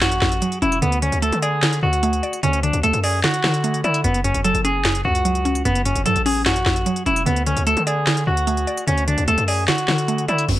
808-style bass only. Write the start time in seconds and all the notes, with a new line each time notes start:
Already playing: A1
0.22 A1
0.62 E1
0.82 D2
1.12 D2
1.32 D3
1.83 D2
2.43 D2
2.73 D2
2.83 D2
2.94 F#2
3.44 D3
3.84 D3
4.04 F#1
4.34 F#1
4.55 F#1
5.05 C#2
5.65 F#1
5.96 F#1
6.06 F#2
6.16 A1
6.66 A1
7.06 E1
7.26 D2
7.57 D2
7.77 D3
8.27 D2
8.88 D2
9.18 D2
9.28 D2
9.38 F#2
9.88 D3
10.28 D3
10.49 F#1